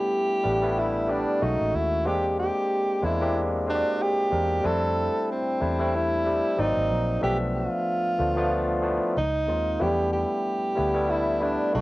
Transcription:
Already playing: tine electric piano G3 A3 B3 D4 E4, tenor saxophone G4
0.44 fingered electric bass A1, tine electric piano G3 A3 B3 D4 G4
0.62 tine electric piano G3 A3 B3 D4 E4
0.79 tenor saxophone E4
1.08 tine electric piano G3 A3 B3 D4 G4, tenor saxophone D4
1.41 fingered electric bass B1, tine electric piano G#3 A3 C#4 D#4 F#4, tenor saxophone D#4
1.61 fingered electric bass A1
1.74 fingered electric bass D#2, tenor saxophone E4
2.05 fingered electric bass E2, tine electric piano G#3 A#3 C4 D4 G4, tenor saxophone G4
2.40 tenor saxophone G4
3.02 fingered electric bass E2, tine electric piano G#3 A#3 C4 D4 E4, tenor saxophone E4
3.20 tine electric piano G#3 A#3 C4 D4 G4
3.67 tine electric piano G#3 A#3 C4 D4 F#4, tenor saxophone D4
3.75 tine electric piano G4
4.02 tenor saxophone G4
4.31 fingered electric bass E2, tine electric piano G#3 A#3 C4 D4 A#4
4.63 fingered electric bass F2, tine electric piano G3 A3 C4 D4 E4, tenor saxophone A4
5.32 tenor saxophone C4
5.60 fingered electric bass E2, tine electric piano G3 A3 C4 D4 E4
5.79 tine electric piano G3 A3 C4 D4 E4
5.96 tenor saxophone E4
6.25 tine electric piano G3 A3 C4 D4 G4
6.57 fingered electric bass G#1, tine electric piano F#3 A#3 C4 D#4 D5, tenor saxophone D#4
6.77 fingered electric bass G#1
6.90 fingered electric bass A#1
7.21 fingered electric bass B1, tine electric piano F3 A3 B3 D4 E5, tenor saxophone G4
7.55 tenor saxophone F4
8.18 fingered electric bass D2, tine electric piano F3 A3 B3 D4 F4
8.36 tine electric piano F3 A3 B3 D4 F4
8.82 tine electric piano F3 A3 B3 D4 E4
9.17 fingered electric bass C#2, tenor saxophone D#4
9.47 fingered electric bass D#2, tine electric piano G#3 A#3 C4 D#4 F4
9.79 fingered electric bass E2, tine electric piano F3 A3 B3 D4 E4, tenor saxophone G4
9.85 tine electric piano G3
10.13 tenor saxophone G4
10.75 fingered electric bass D2, tine electric piano G3 A3 B3 D4 E4
10.94 tine electric piano G3 A3 B3 D4 E4
11.10 tenor saxophone E4
11.40 tine electric piano G3 A3 B3 D4 E4, tenor saxophone D4
11.73 fingered electric bass B1, tine electric piano G#3 A3 C#4 D#4 F#4, tenor saxophone D#4

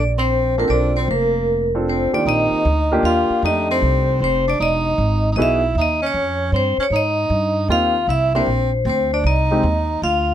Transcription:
Already playing: upright bass A#1
0.18 tenor saxophone C4, vibraphone C5
0.58 tenor saxophone A#3, grand piano C4 D4 F4 A4, vibraphone A#4
0.68 upright bass B1, tenor saxophone C4 D4, vibraphone C5 D5
0.96 tenor saxophone C4, vibraphone C5
1.08 upright bass F1, tenor saxophone A#3, vibraphone A#4
1.75 grand piano C4 D4 F4 A4
1.89 tenor saxophone C4, vibraphone C5
2.13 grand piano D#3 A#3 C4 F4 G4, tenor saxophone D4, vibraphone D5, muted upright bass stroke
2.25 upright bass A#1, tenor saxophone D#4, vibraphone D#5
2.52 muted upright bass stroke
2.65 upright bass D2
2.92 grand piano A#3 D4 F4 G4
3.03 upright bass D#2, tenor saxophone F4, vibraphone F5
3.30 muted upright bass stroke
3.42 upright bass F2, grand piano A3 D4 D#4 G4, tenor saxophone D#4, vibraphone D#5
3.71 tenor saxophone C4, vibraphone C5
3.82 upright bass C2
4.20 upright bass F1, tenor saxophone C4, vibraphone C5
4.48 tenor saxophone D4, vibraphone D5
4.59 upright bass E1, tenor saxophone D#4, vibraphone D#5
4.98 upright bass G#1
5.32 tenor saxophone D#4
5.36 upright bass B1, grand piano B3 D#4 F#4 G#4, tenor saxophone E4, vibraphone D#5
5.42 vibraphone E5
5.75 upright bass D#2, tenor saxophone D#4
5.81 vibraphone D#5
6.02 tenor saxophone C#4
6.07 vibraphone C#5
6.14 upright bass F2
6.52 upright bass G2, tenor saxophone C4
6.56 vibraphone C5
6.78 tenor saxophone C#4, muted upright bass stroke
6.83 vibraphone C#5
6.90 upright bass G#2, tenor saxophone D#4
6.96 vibraphone D#5
7.30 upright bass G2
7.68 upright bass D#2, grand piano A#3 C4 D#4 G4, tenor saxophone F4, vibraphone F5
8.07 upright bass C2, tenor saxophone E4, vibraphone E5
8.35 grand piano A#3 D4 E4 G4, tenor saxophone C4, vibraphone C5
8.46 upright bass A#1
8.85 upright bass D2, tenor saxophone C4
8.89 vibraphone C5
9.13 tenor saxophone D4, vibraphone D5
9.24 upright bass C2, tenor saxophone D#4, vibraphone D#5
9.51 grand piano G#3 C4 D#4 G4
9.63 upright bass D#2
10.02 upright bass D2, tenor saxophone F4, vibraphone F5

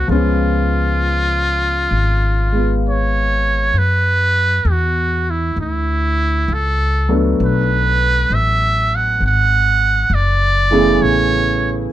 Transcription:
Already playing: grand piano C4
0.08 upright bass C#2, grand piano F3 G#3 B3 C#4, muted trumpet F4
0.12 grand piano G#4
1.91 upright bass G#1
2.52 grand piano G#3 B3 F4
2.89 muted trumpet C#5
3.73 upright bass F#2
3.78 muted trumpet B4
4.65 upright bass E2
4.71 muted trumpet F#4
5.30 muted trumpet E4
5.56 upright bass D2
5.61 muted trumpet E4
6.48 upright bass C#2
6.54 muted trumpet A4
7.09 grand piano F#3 A3 B3 D4 A4
7.40 upright bass B1
7.45 muted trumpet B4
8.30 upright bass A1, muted trumpet E5
8.96 muted trumpet F#5
9.21 upright bass G#1
9.26 muted trumpet F#5
10.10 upright bass F#1
10.14 muted trumpet D5
10.71 grand piano C#3 E3 A3 B3 G#4
11.01 upright bass A1, muted trumpet C#5

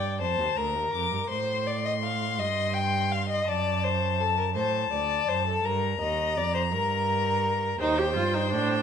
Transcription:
Already playing: cello G2, violin D5 G5
0.20 cello F2, violin C5 A5
0.38 cello D#2
0.56 cello D2, violin A#4 A#5
0.74 cello D#2
0.93 cello F2, violin D6
1.11 cello G2
1.29 cello A2, violin C5 C6
1.67 violin D5
1.85 violin D#5
2.03 violin F5
2.38 cello G2, violin D#5
2.74 violin G5
3.11 violin F5
3.29 violin D#5
3.47 cello F#2, violin D5 A5
3.84 violin C5
4.20 violin A4
4.37 violin A#4
4.55 cello A2, violin C5 A5
4.92 cello D2, violin D5
5.28 cello F#2, violin C5
5.47 violin A4
5.64 cello G2, violin A#4 A#5
6.01 cello D#2, violin D#5
6.36 cello F2, violin D5
6.54 violin C5
6.73 cello G2, violin A#4
7.80 cello D#2, viola D#4, violin C5 G5
7.98 viola G4
8.16 cello G2, viola F4
8.34 viola D#4
8.52 cello A2, viola D4

